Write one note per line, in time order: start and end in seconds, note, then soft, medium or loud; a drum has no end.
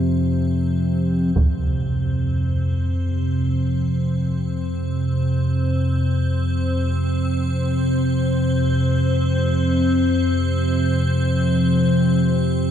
0.00 1.36 F2 medium
0.00 1.36 C3 medium
0.00 1.34 C4 medium
0.00 1.34 C5 medium
1.35 12.71 F2 medium
1.35 12.71 C3 medium
1.35 12.71 C4 medium
1.35 12.71 C5 medium
1.35 taiko medium